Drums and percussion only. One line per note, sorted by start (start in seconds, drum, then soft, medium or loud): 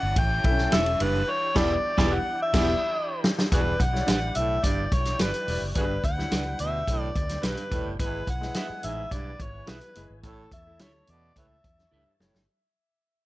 0.16 kick loud
0.16 ride medium
0.44 kick loud
0.44 ride medium
0.58 snare soft
0.72 snare loud
0.72 ride medium
0.86 ride soft
1.00 ride medium
1.56 kick loud
1.56 snare loud
1.56 crash medium
1.98 kick loud
1.98 snare loud
2.54 kick loud
2.54 snare loud
2.54 crash medium
3.24 snare loud
3.39 snare loud
3.52 kick loud
3.52 closed hi-hat medium
3.80 kick loud
3.80 closed hi-hat medium
3.95 snare soft
4.08 snare loud
4.08 closed hi-hat medium
4.35 closed hi-hat medium
4.64 kick medium
4.64 closed hi-hat medium
4.92 kick loud
4.92 closed hi-hat medium
5.05 snare soft
5.05 closed hi-hat medium
5.19 snare loud
5.19 closed hi-hat loud
5.34 closed hi-hat medium
5.48 open hi-hat medium
5.75 kick loud
5.75 closed hi-hat medium
6.04 kick medium
6.04 closed hi-hat medium
6.19 snare soft
6.31 snare loud
6.31 closed hi-hat loud
6.59 closed hi-hat medium
6.88 kick medium
6.88 closed hi-hat medium
7.16 kick loud
7.16 closed hi-hat medium
7.29 snare soft
7.29 closed hi-hat medium
7.43 snare loud
7.43 closed hi-hat loud
7.57 closed hi-hat medium
7.72 kick medium
7.72 closed hi-hat medium
8.00 kick loud
8.00 closed hi-hat loud
8.27 kick medium
8.27 closed hi-hat medium
8.42 snare soft
8.54 snare loud
8.54 closed hi-hat medium
8.83 closed hi-hat medium
9.11 kick medium
9.11 closed hi-hat medium
9.40 kick medium
9.40 closed hi-hat medium
9.67 snare loud
9.67 closed hi-hat loud
9.81 closed hi-hat medium
9.95 closed hi-hat medium
10.23 kick loud
10.23 closed hi-hat medium
10.51 kick medium
10.51 closed hi-hat medium
10.79 snare loud
10.79 closed hi-hat medium
11.07 closed hi-hat medium
11.36 kick medium
11.36 closed hi-hat medium
11.64 kick medium
11.64 closed hi-hat medium
11.78 snare soft
12.20 snare medium
12.35 snare medium